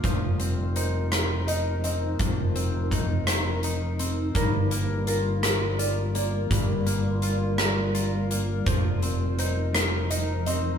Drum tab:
HH |xxxxxx|xxxxxx|xxxxxx|xxxxxx|
SD |---r--|---r--|---r--|---r--|
BD |o-----|o-o---|o-----|o-----|

HH |xxxxxx|
SD |---r--|
BD |o-----|